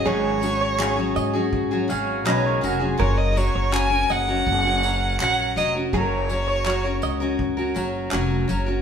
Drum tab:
TB |-x-x-x-x|-x-x-x-x|-x-x-x-x|
CP |--x---x-|--x---x-|--x---x-|
BD |----o---|o---o---|o---o---|